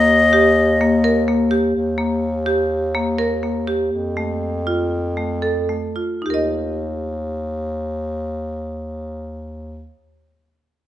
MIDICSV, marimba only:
0, 0, Header, 1, 2, 480
1, 0, Start_track
1, 0, Tempo, 474308
1, 1773, Time_signature, 9, 3, 24, 8
1, 3216, Tempo, 496689
1, 5136, Tempo, 542005
1, 10190, End_track
2, 0, Start_track
2, 0, Title_t, "Marimba"
2, 0, Program_c, 0, 12
2, 0, Note_on_c, 0, 58, 66
2, 256, Note_off_c, 0, 58, 0
2, 332, Note_on_c, 0, 67, 74
2, 738, Note_off_c, 0, 67, 0
2, 820, Note_on_c, 0, 58, 69
2, 1020, Note_off_c, 0, 58, 0
2, 1054, Note_on_c, 0, 70, 70
2, 1256, Note_off_c, 0, 70, 0
2, 1295, Note_on_c, 0, 58, 60
2, 1497, Note_off_c, 0, 58, 0
2, 1527, Note_on_c, 0, 67, 60
2, 1732, Note_off_c, 0, 67, 0
2, 2003, Note_on_c, 0, 58, 61
2, 2412, Note_off_c, 0, 58, 0
2, 2491, Note_on_c, 0, 67, 66
2, 2898, Note_off_c, 0, 67, 0
2, 2982, Note_on_c, 0, 58, 63
2, 3184, Note_off_c, 0, 58, 0
2, 3223, Note_on_c, 0, 70, 67
2, 3417, Note_off_c, 0, 70, 0
2, 3461, Note_on_c, 0, 58, 55
2, 3654, Note_off_c, 0, 58, 0
2, 3696, Note_on_c, 0, 67, 62
2, 3891, Note_off_c, 0, 67, 0
2, 4173, Note_on_c, 0, 57, 56
2, 4575, Note_off_c, 0, 57, 0
2, 4656, Note_on_c, 0, 65, 58
2, 5067, Note_off_c, 0, 65, 0
2, 5143, Note_on_c, 0, 57, 52
2, 5334, Note_off_c, 0, 57, 0
2, 5364, Note_on_c, 0, 69, 58
2, 5562, Note_off_c, 0, 69, 0
2, 5601, Note_on_c, 0, 57, 51
2, 5800, Note_off_c, 0, 57, 0
2, 5838, Note_on_c, 0, 65, 51
2, 6039, Note_off_c, 0, 65, 0
2, 6070, Note_on_c, 0, 63, 45
2, 6105, Note_on_c, 0, 67, 49
2, 6143, Note_on_c, 0, 70, 49
2, 6176, Note_on_c, 0, 75, 47
2, 9330, Note_off_c, 0, 63, 0
2, 9365, Note_off_c, 0, 67, 0
2, 9403, Note_off_c, 0, 70, 0
2, 9436, Note_off_c, 0, 75, 0
2, 10190, End_track
0, 0, End_of_file